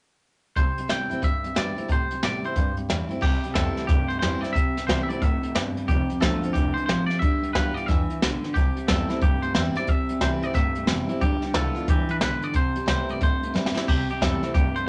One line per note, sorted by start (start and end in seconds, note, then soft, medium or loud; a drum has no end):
0.56 0.74 C2 medium
0.56 0.75 C3 medium
0.56 1.21 C3 medium
0.56 0.75 G3 medium
0.56 0.91 C5 loud
0.56 kick loud
0.56 closed hi-hat medium
0.77 0.89 C3 medium
0.77 0.89 G3 medium
0.77 muted upright bass stroke medium
0.77 closed hi-hat medium
0.88 1.07 G2 medium
0.88 1.09 C3 medium
0.88 1.09 E3 medium
0.88 1.09 G3 medium
0.88 1.09 A3 loud
0.88 1.09 C4 medium
0.88 1.08 E4 medium
0.88 1.24 G5 medium
0.88 snare loud
0.88 closed hi-hat medium
1.10 1.21 A2 medium
1.10 1.21 C3 medium
1.10 1.22 A3 medium
1.10 1.23 C4 soft
1.10 1.22 E4 medium
1.10 closed hi-hat medium
1.22 1.86 G2 medium
1.22 1.40 A2 medium
1.22 1.42 C3 medium
1.22 1.42 G3 medium
1.22 1.58 E5 loud
1.22 kick loud
1.22 closed hi-hat medium
1.43 1.54 E2 medium
1.43 1.55 C3 medium
1.43 1.55 G3 medium
1.43 closed hi-hat medium
1.55 1.74 G2 medium
1.55 1.75 C3 medium
1.55 1.76 E3 medium
1.55 1.76 G3 medium
1.55 1.76 A3 medium
1.55 1.77 C4 medium
1.55 1.75 E4 medium
1.55 1.91 D5 medium
1.55 snare loud
1.55 closed hi-hat medium
1.76 1.88 C3 medium
1.76 1.89 A3 medium
1.76 1.89 C4 soft
1.76 1.88 E4 medium
1.76 muted upright bass stroke medium
1.76 closed hi-hat medium
1.88 2.07 A2 medium
1.88 2.53 C3 medium
1.88 2.09 C3 medium
1.88 2.09 G3 medium
1.88 2.22 C5 medium
1.88 kick loud
1.88 closed hi-hat medium
2.11 2.22 C3 medium
2.11 2.22 G3 medium
2.11 muted upright bass stroke medium
2.11 closed hi-hat medium
2.23 2.40 A2 medium
2.23 2.42 C3 medium
2.23 2.43 E3 medium
2.23 2.43 G3 medium
2.23 2.42 A3 loud
2.23 2.44 C4 medium
2.23 2.43 E4 medium
2.23 2.45 D5 medium
2.23 snare loud
2.23 closed hi-hat medium
2.44 2.55 C3 medium
2.44 2.56 A3 medium
2.44 2.57 C4 soft
2.44 2.56 E4 medium
2.44 2.76 C5 medium
2.44 muted upright bass stroke medium
2.44 closed hi-hat medium
2.56 2.73 G2 medium
2.56 3.20 G2 medium
2.56 2.75 C3 medium
2.56 2.76 G3 medium
2.56 kick loud
2.56 closed hi-hat medium
2.77 2.88 C3 medium
2.77 2.89 G3 medium
2.77 muted upright bass stroke medium
2.77 closed hi-hat medium
2.89 3.07 E2 medium
2.89 3.08 C3 medium
2.89 3.09 E3 medium
2.89 3.10 G3 medium
2.89 3.08 A3 medium
2.89 3.10 C4 medium
2.89 3.08 E4 medium
2.89 snare loud
2.89 closed hi-hat medium
3.09 3.21 C3 medium
3.09 3.22 A3 medium
3.09 3.22 C4 soft
3.09 3.21 E4 medium
3.09 muted upright bass stroke medium
3.09 closed hi-hat medium
3.21 3.37 C2 medium
3.21 3.86 C3 medium
3.21 3.41 C3 medium
3.21 3.42 G3 loud
3.21 3.54 G4 medium
3.21 kick loud
3.21 crash medium
3.43 3.55 C3 medium
3.43 3.55 G3 medium
3.43 muted upright bass stroke medium
3.43 closed hi-hat medium
3.54 3.70 F2 medium
3.54 3.75 C3 medium
3.54 3.87 E3 medium
3.54 3.87 G3 medium
3.54 3.75 A3 medium
3.54 3.88 C4 medium
3.54 3.88 E4 medium
3.54 3.87 A4 medium
3.54 kick medium
3.54 snare loud
3.54 closed hi-hat medium
3.77 3.88 C3 medium
3.77 3.88 A3 medium
3.77 muted upright bass stroke medium
3.77 snare soft
3.77 closed hi-hat medium
3.87 4.03 C2 medium
3.87 4.53 G2 medium
3.87 4.08 C3 medium
3.87 4.08 A3 medium
3.87 4.10 G4 medium
3.87 kick loud
3.87 snare soft
3.87 closed hi-hat medium
4.08 4.21 C3 medium
4.08 4.21 A3 medium
4.08 4.18 C5 medium
4.08 muted upright bass stroke medium
4.08 closed hi-hat medium
4.19 4.37 E2 medium
4.19 4.41 C3 medium
4.19 4.42 E3 medium
4.19 4.41 G3 loud
4.19 4.43 G3 medium
4.19 4.42 C4 loud
4.19 4.41 E4 loud
4.19 4.41 C5 medium
4.19 snare loud
4.19 closed hi-hat medium
4.41 4.54 C3 medium
4.41 4.54 G3 medium
4.41 4.55 C4 soft
4.41 4.54 E4 medium
4.41 4.52 D5 medium
4.41 muted upright bass stroke medium
4.41 snare soft
4.41 closed hi-hat medium
4.53 4.70 G2 medium
4.53 5.19 C3 medium
4.53 4.75 C3 medium
4.53 4.75 G3 loud
4.53 4.87 E5 loud
4.53 kick loud
4.53 closed hi-hat medium
4.76 4.84 A2 medium
4.76 4.87 C3 medium
4.76 4.88 G3 medium
4.76 snare soft
4.76 closed hi-hat medium
4.87 5.07 C3 medium
4.87 5.03 C3 medium
4.87 5.09 E3 medium
4.87 5.09 G3 medium
4.87 5.08 A3 medium
4.87 5.09 C4 medium
4.87 5.08 E4 medium
4.87 5.03 C5 medium
4.87 kick medium
4.87 snare loud
4.87 closed hi-hat medium
5.03 5.09 E5 medium
5.09 5.20 C3 medium
5.09 5.21 A3 medium
5.09 5.22 C4 medium
5.09 5.21 E4 medium
5.09 5.22 D5 loud
5.09 muted upright bass stroke medium
5.09 closed hi-hat medium
5.22 5.54 A2 medium
5.22 5.36 A2 medium
5.22 5.41 C3 medium
5.22 5.41 A3 medium
5.22 5.55 E5 medium
5.22 kick loud
5.22 closed hi-hat medium
5.43 5.54 C3 medium
5.43 5.54 A3 medium
5.43 muted upright bass stroke medium
5.43 closed hi-hat medium
5.55 5.87 G2 medium
5.55 5.70 G2 medium
5.55 5.74 C3 medium
5.55 5.74 G3 medium
5.55 snare loud
5.55 closed hi-hat medium
5.77 5.88 C3 medium
5.77 5.88 G3 medium
5.77 closed hi-hat medium
5.88 6.03 F1 medium
5.88 6.52 F2 medium
5.88 6.08 F2 medium
5.88 6.08 C3 medium
5.88 6.21 G4 medium
5.88 kick loud
5.88 closed hi-hat medium
6.10 6.21 F2 medium
6.10 6.21 C3 medium
6.10 closed hi-hat medium
6.20 6.36 A1 loud
6.20 6.41 F2 medium
6.20 6.41 D3 loud
6.20 6.41 F3 medium
6.20 6.41 A3 medium
6.20 6.42 C4 medium
6.20 6.41 F4 medium
6.20 6.52 A4 medium
6.20 kick medium
6.20 snare loud
6.20 closed hi-hat medium
6.42 6.54 F2 medium
6.42 6.54 D3 medium
6.42 6.55 C4 medium
6.42 6.54 F4 medium
6.42 muted upright bass stroke medium
6.42 closed hi-hat medium
6.53 6.70 F1 medium
6.53 6.74 F2 medium
6.53 6.74 D3 medium
6.53 6.87 E3 medium
6.53 6.74 G4 medium
6.53 kick loud
6.53 closed hi-hat medium
6.74 6.87 F2 medium
6.74 6.87 D3 medium
6.74 6.85 C5 medium
6.74 muted upright bass stroke medium
6.74 closed hi-hat medium
6.86 7.03 A1 medium
6.86 7.07 F2 medium
6.86 7.07 C3 medium
6.86 7.20 F3 medium
6.86 7.06 C5 medium
6.86 snare loud
6.86 closed hi-hat loud
7.06 7.20 F2 medium
7.06 7.21 C3 medium
7.06 7.19 D5 medium
7.06 snare soft
7.06 closed hi-hat medium
7.19 7.36 G1 medium
7.19 7.40 G2 medium
7.19 7.41 D3 loud
7.19 7.54 G3 medium
7.19 7.51 E5 loud
7.19 kick loud
7.19 closed hi-hat medium
7.43 7.51 E2 medium
7.43 7.53 G2 medium
7.43 7.54 D3 medium
7.43 closed hi-hat medium
7.53 7.74 G2 medium
7.53 7.70 G2 medium
7.53 7.74 E3 loud
7.53 7.87 G3 medium
7.53 7.87 B3 medium
7.53 7.88 F4 medium
7.53 7.74 B4 medium
7.53 kick medium
7.53 snare loud
7.53 closed hi-hat medium
7.74 7.86 G2 medium
7.74 7.87 E3 medium
7.74 7.86 D5 loud
7.74 muted upright bass stroke medium
7.74 closed hi-hat medium
7.86 8.03 F2 medium
7.86 8.07 G2 medium
7.86 8.07 E3 medium
7.86 8.20 E3 medium
7.86 8.21 E5 medium
7.86 kick loud
7.86 snare soft
7.86 closed hi-hat medium
8.09 8.20 G2 medium
8.09 8.20 E3 medium
8.09 closed hi-hat medium
8.22 8.37 B1 medium
8.22 8.41 G2 medium
8.22 8.41 D3 medium
8.22 8.54 D3 medium
8.22 snare loud
8.22 closed hi-hat medium
8.43 8.54 G2 medium
8.43 8.54 D3 medium
8.43 muted upright bass stroke medium
8.43 snare soft
8.43 closed hi-hat medium
8.54 8.70 C2 medium
8.54 9.19 C3 medium
8.54 8.74 C3 medium
8.54 8.75 G3 medium
8.54 8.88 G4 medium
8.54 kick loud
8.54 closed hi-hat medium
8.75 8.87 C3 medium
8.75 8.87 G3 medium
8.75 muted upright bass stroke medium
8.75 closed hi-hat medium
8.88 9.03 F2 medium
8.88 9.07 C3 medium
8.88 9.08 E3 medium
8.88 9.09 G3 medium
8.88 9.08 A3 medium
8.88 9.09 C4 medium
8.88 9.08 E4 medium
8.88 9.19 A4 medium
8.88 kick medium
8.88 snare loud
8.88 closed hi-hat medium
9.09 9.20 C3 medium
9.09 9.21 A3 medium
9.09 9.22 C4 soft
9.09 9.21 E4 medium
9.09 snare soft
9.09 closed hi-hat medium
9.21 9.36 C2 medium
9.21 9.86 G2 medium
9.21 9.41 C3 medium
9.21 9.41 A3 medium
9.21 9.44 G4 medium
9.21 kick loud
9.21 closed hi-hat medium
9.42 9.54 C3 medium
9.42 9.54 A3 medium
9.42 9.53 C5 medium
9.42 muted upright bass stroke medium
9.42 closed hi-hat medium
9.54 9.70 E2 medium
9.54 9.74 C3 medium
9.54 9.75 E3 medium
9.54 9.75 G3 medium
9.54 9.76 C4 medium
9.54 9.75 E4 loud
9.54 9.60 C5 medium
9.54 snare loud
9.54 closed hi-hat medium
9.75 9.87 C3 medium
9.75 9.88 G3 medium
9.75 9.89 C4 soft
9.75 9.88 E4 medium
9.75 9.89 D5 medium
9.75 muted upright bass stroke medium
9.75 snare soft
9.75 closed hi-hat medium
9.87 10.02 G2 loud
9.87 10.52 C3 medium
9.87 10.07 C3 medium
9.87 10.08 G3 medium
9.87 10.22 E5 loud
9.87 kick loud
9.87 closed hi-hat medium
10.09 10.18 A2 medium
10.09 10.21 C3 medium
10.09 10.21 G3 medium
10.09 closed hi-hat medium
10.21 10.36 C3 medium
10.21 10.41 C3 medium
10.21 10.41 E3 medium
10.21 10.42 G3 medium
10.21 10.41 A3 loud
10.21 10.42 C4 medium
10.21 10.41 E4 medium
10.21 10.28 C5 medium
10.21 kick medium
10.21 snare loud
10.21 closed hi-hat medium
10.42 10.54 C3 medium
10.42 10.54 A3 medium
10.42 10.55 C4 medium
10.42 10.54 E4 medium
10.42 10.55 D5 loud
10.42 muted upright bass stroke medium
10.42 closed hi-hat medium
10.54 11.18 G2 medium
10.54 10.69 A2 medium
10.54 10.74 C3 medium
10.54 10.75 A3 medium
10.54 10.86 E5 medium
10.54 kick loud
10.54 snare soft
10.54 closed hi-hat medium
10.75 10.87 C3 medium
10.75 10.87 A3 medium
10.75 muted upright bass stroke medium
10.75 closed hi-hat medium
10.87 11.03 F1 medium
10.87 11.08 C3 medium
10.87 11.08 E3 medium
10.87 11.08 G3 loud
10.87 11.08 G3 medium
10.87 11.08 C4 medium
10.87 11.08 E4 medium
10.87 snare loud
10.87 closed hi-hat medium
11.09 11.21 C3 medium
11.09 11.21 G3 medium
11.09 11.21 C4 soft
11.09 11.21 E4 medium
11.09 closed hi-hat medium
11.21 11.36 G1 medium
11.21 11.41 G2 medium
11.21 11.41 D3 loud
11.21 11.52 G3 medium
11.21 11.52 G4 medium
11.21 kick loud
11.21 closed hi-hat medium
11.42 11.54 G2 medium
11.42 11.54 D3 medium
11.42 muted upright bass stroke medium
11.42 snare soft
11.42 closed hi-hat medium
11.53 11.69 C2 medium
11.53 11.74 G2 medium
11.53 11.74 E3 medium
11.53 11.74 G3 medium
11.53 11.75 B3 medium
11.53 11.73 F4 medium
11.53 11.86 A4 medium
11.53 kick medium
11.53 snare loud
11.53 closed hi-hat medium
11.75 11.86 G2 medium
11.75 11.87 E3 medium
11.75 11.88 B3 soft
11.75 11.87 F4 medium
11.75 muted upright bass stroke medium
11.75 closed hi-hat medium
11.88 12.03 G1 medium
11.88 12.07 G2 medium
11.88 12.07 E3 medium
11.88 12.20 E3 medium
11.88 12.11 G4 medium
11.88 kick loud
11.88 closed hi-hat medium
12.09 12.19 G2 medium
12.09 12.20 E3 medium
12.09 12.16 B4 medium
12.09 muted upright bass stroke medium
12.09 closed hi-hat medium
12.20 12.36 B1 medium
12.20 12.40 G2 medium
12.20 12.40 D3 medium
12.20 12.53 D3 medium
12.20 12.44 B4 medium
12.20 snare loud
12.20 closed hi-hat medium
12.42 12.53 G2 medium
12.42 12.53 D3 medium
12.42 12.55 D5 loud
12.42 closed hi-hat medium
12.54 12.69 C2 medium
12.54 13.18 C3 medium
12.54 12.73 C3 medium
12.54 12.73 G3 medium
12.54 12.88 C5 loud
12.54 kick loud
12.54 closed hi-hat medium
12.76 12.84 A2 medium
12.76 12.87 C3 medium
12.76 12.87 G3 medium
12.76 closed hi-hat medium
12.86 13.07 C3 medium
12.86 13.03 C3 medium
12.86 13.19 E3 medium
12.86 13.20 G3 medium
12.86 13.07 A3 loud
12.86 13.20 C4 medium
12.86 13.20 E4 medium
12.86 13.10 C5 medium
12.86 kick medium
12.86 snare loud
12.86 closed hi-hat medium
13.09 13.20 C3 medium
13.09 13.20 A3 medium
13.09 13.22 D5 loud
13.09 muted upright bass stroke medium
13.09 closed hi-hat medium
13.21 13.85 G2 medium
13.21 13.36 A2 medium
13.21 13.40 C3 medium
13.21 13.41 A3 medium
13.21 13.53 C5 medium
13.21 kick loud
13.21 closed hi-hat medium
13.43 13.54 C3 medium
13.43 13.54 A3 medium
13.43 muted upright bass stroke medium
13.43 closed hi-hat medium
13.54 13.69 G2 medium
13.54 13.74 C3 medium
13.54 13.74 E3 medium
13.54 13.75 G3 medium
13.54 13.74 G3 medium
13.54 13.75 C4 loud
13.54 13.74 E4 medium
13.54 snare medium
13.66 snare medium
13.75 13.87 C3 medium
13.75 13.87 G3 medium
13.75 13.88 C4 soft
13.75 13.87 E4 medium
13.75 muted upright bass stroke medium
13.75 snare loud
13.88 14.03 C2 medium
13.88 14.52 C3 medium
13.88 14.07 C3 medium
13.88 14.07 G3 loud
13.88 14.08 G4 medium
13.88 kick loud
13.88 crash loud
14.09 14.20 C3 medium
14.09 14.21 G3 medium
14.09 14.22 G4 medium
14.09 muted upright bass stroke medium
14.09 closed hi-hat medium
14.21 14.36 F2 medium
14.21 14.41 C3 medium
14.21 14.41 E3 medium
14.21 14.42 G3 medium
14.21 14.41 A3 loud
14.21 14.42 C4 medium
14.21 14.41 E4 medium
14.21 14.54 A4 medium
14.21 kick medium
14.21 snare loud
14.21 closed hi-hat medium
14.42 14.54 C3 medium
14.42 14.54 A3 medium
14.42 14.55 C4 medium
14.42 14.54 E4 medium
14.42 muted upright bass stroke medium
14.42 snare soft
14.42 closed hi-hat medium
14.54 14.69 C2 medium
14.54 14.89 G2 medium
14.54 14.74 C3 medium
14.54 14.74 A3 medium
14.54 14.76 G4 medium
14.54 kick loud
14.54 snare soft
14.54 closed hi-hat medium
14.75 14.87 C3 medium
14.75 14.87 A3 medium
14.75 14.85 C5 loud
14.75 muted upright bass stroke medium
14.75 closed hi-hat medium